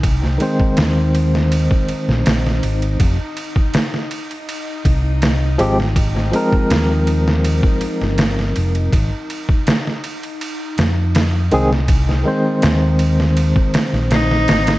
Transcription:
<<
  \new Staff \with { instrumentName = "Cello" } { \time 4/4 \key aes \major \tempo 4 = 81 r1 | r1 | r1 | r1 |
r2. ees'4 | }
  \new Staff \with { instrumentName = "Synth drone" } { \time 4/4 \key aes \major ees'1~ | ees'1~ | ees'1~ | ees'1~ |
ees'1 | }
  \new Staff \with { instrumentName = "Tine electric piano" } { \time 4/4 \key aes \major r8 <ees aes c' c''>2.~ <ees aes c' c''>8 | r2. r8 <f aes c' g'>8 | r8 <f aes c' bes'>2.~ <f aes c' bes'>8 | r2. r8 <ees aes c' aes'>8 |
r8 <ees aes c' c''>2.~ <ees aes c' c''>8 | }
  \new Staff \with { instrumentName = "Fingered electric bass" } { \clef bass \time 4/4 \key aes \major c,8 r8 ees,4~ ees,16 r8 bes,,16 bes,,8 aes,,8 | f,,16 r2 r16 c,4 aes,,8~ | aes,,8 r8 ees,4~ ees,16 r8 g,,8. f,,8 | aes,,16 r2 r16 f,4 c,8~ |
c,8 r8 ees,4~ ees,16 r8 bes,,8. aes,,8 | }
  \new DrumStaff \with { instrumentName = "Drums" } \drummode { \time 4/4 <bd cymr>16 sn16 cymr16 bd16 <cymr sn>8 cymr16 sn16 cymr16 bd16 cymr16 sn16 <cymr sn>16 sn16 cymr16 cymr16 | <bd cymr>8 cymr16 bd16 <cymr sn>16 sn16 cymr16 cymr16 cymr8 <bd cymr>8 <cymr sn>8 cymr16 sn16 | <bd cymr>16 sn16 cymr16 bd16 <cymr sn>8 cymr16 sn16 cymr16 bd16 cymr16 sn16 <cymr sn>16 sn16 cymr16 cymr16 | <bd cymr>8 cymr16 bd16 <cymr sn>16 sn16 cymr16 cymr16 cymr8 <cymr sn>8 <cymr sn>8 cymr16 sn16 |
<bd cymr>16 sn8. <cymr sn>8 cymr16 sn16 cymr16 bd16 <cymr sn>16 sn16 <cymr sn>16 sn16 <cymr sn>16 <cymr sn>16 | }
>>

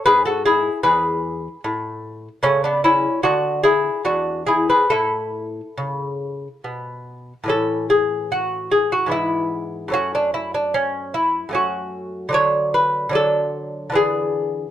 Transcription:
<<
  \new Staff \with { instrumentName = "Lute" } { \time 3/4 \key a \major \tempo 4 = 74 <gis' b'>16 <fis' a'>16 <e' gis'>8 <gis' b'>4 r4 | <a cis'>16 <b d'>16 <cis' e'>8 <d' fis'>8 <e' gis'>8 <d' fis'>8 <e' gis'>16 <gis' b'>16 | <e' a'>2 r4 | a'8 gis'8 fis'8 gis'16 fis'16 e'4 |
fis'16 d'16 e'16 d'16 cis'8 e'8 fis'4 | cis''8 b'8 a'4 gis'4 | }
  \new Staff \with { instrumentName = "Lute" } { \clef bass \time 3/4 \key a \major gis,4 e,4 a,4 | cis4 d4 e,4 | a,4 cis4 b,4 | <a, e cis'>2 <gis, e b>4 |
<fis, a cis'>2 <fis, a cis'>4 | <d fis d'>4 <d fis d'>4 <d e b>4 | }
>>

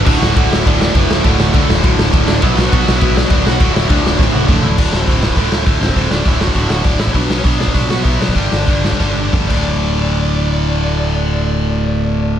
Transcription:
<<
  \new Staff \with { instrumentName = "Lead electric guitar" } { \time 4/4 \key d \major \tempo 4 = 203 <d' d''>8 <fis' fis''>8 <fis' fis''>8 <e' e''>8 <d' d''>8 <d' d''>8 <b b'>8 <a a'>8~ | <a a'>4. r2 <d' d''>8 | <e' e''>8 <fis' fis''>8 <fis' fis''>8. <e' e''>8. <d' d''>8 <d' d''>8 <fis' fis''>8~ | <fis' fis''>8 <e' e''>8 <d' d''>4 r8 <fis' fis''>8 <d' d''>8 <e' e''>8 |
<d' d''>8. <c' c''>8. <b b'>8 <a a'>4. <c' c''>8~ | <c' c''>8 <d' d''>8 <e' e''>8 <fis' fis''>4 <fis' fis''>8 <d' d''>8 <e' e''>8 | <d' d''>8. <cis' cis''>16 <d' d''>8 <d' d''>4 <fis' fis''>8 <e' e''>8 <d' d''>8~ | <d' d''>2. r8 d''8~ |
d''1~ | d''1 | }
  \new Staff \with { instrumentName = "Overdriven electric guitar" } { \clef bass \time 4/4 \key d \major <d, a, d a fis'>1 | <d, a, d a fis'>1 | <b, fis b d' fis' b'>1 | <d, a, d a fis'>1 |
r1 | r1 | r1 | r1 |
r1 | r1 | }
  \new Staff \with { instrumentName = "Distorted electric guitar" } { \clef bass \time 4/4 \key d \major <d, a, d>4 <d, a, d>4 <d, a, d>4 <d, a, d>4 | <d, a, d>4 <d, a, d>4 <d, a, d>4 <d, a, d>4 | <b, fis b>4 <b, fis b>4 <b, fis b>4 <b, fis b>4 | <d, a, d>4 <d, a, d>4 <d, a, d>4 <d, a, d>4 |
<d, a, d>4 <d, a, d>4 <d, a, d>4 <d, a, d>4 | <d, a, d>4 <d, a, d>4 <d, a, d>4 <d, a, d>4 | <b, fis b>4 <b, fis b>4 <b, fis b>4 <b, fis b>4 | <g, d g>4 <g, d g>4 <g, d g>4 <g, d g>8 <d, a, d>8~ |
<d, a, d>1~ | <d, a, d>1 | }
  \new Staff \with { instrumentName = "Picked electric bass" } { \clef bass \time 4/4 \key d \major d,,8 d,,8 d,,8 d,,8 d,,4 fis,,8 d,,8 | d,,8 d,,8 d,8 d,,8 d,,8 d,,8 d,,8 d,,8 | b,,8 b,,8 b,,8 b,,8 b,,4 d,,8 b,,8 | d,,8 d,,8 d,8 d,,8 d,,8 d,,8 d,,8 d,,8 |
d,,8 d,,8 d,,4 d,,8 d,,8 d,,8 d,,8 | d,,8 d,,8 d,,4 d,,8 d,,8 d,,8 a,,8 | b,,8 b,,8 b,,4 b,,8 b,,8 b,,8 b,,8 | g,,8 g,,8 g,,4 g,,8 g,,8 g,,8 d,,8~ |
d,,1~ | d,,1 | }
  \new DrumStaff \with { instrumentName = "Drums" } \drummode { \time 4/4 <cymc bd>8 sn8 <bd cymr>8 sn8 <bd cymr>8 sn8 <bd cymr>8 sn8 | <bd cymr>8 sn8 <bd cymr>8 sn8 <bd cymr>8 sn8 <bd cymr>8 sn8 | <bd cymr>8 sn8 <bd cymr>8 sn8 <bd cymr>8 sn8 <bd cymr>8 sn8 | <bd cymr>8 sn8 <bd cymr>8 sn8 <bd sn>8 tommh8 <bd toml>8 tomfh8 |
<cymc bd>8 sn8 <hho bd>8 sn16 bd16 <hho bd>8 sn8 <hho bd>8 sn16 bd16 | <hho bd>8 sn8 <hho bd>8 sn16 bd16 <hho bd>8 sn8 <hho bd>8 sn16 bd16 | <hho bd>8 sn8 <hho bd>8 sn16 bd16 <hho bd>8 sn8 <hho bd>8 sn16 bd16 | <hho bd>8 sn8 <hho bd>8 sn16 bd16 <bd sn>4 <bd toml>8 <cymc bd>8 |
r4 r4 r4 r4 | r4 r4 r4 r4 | }
>>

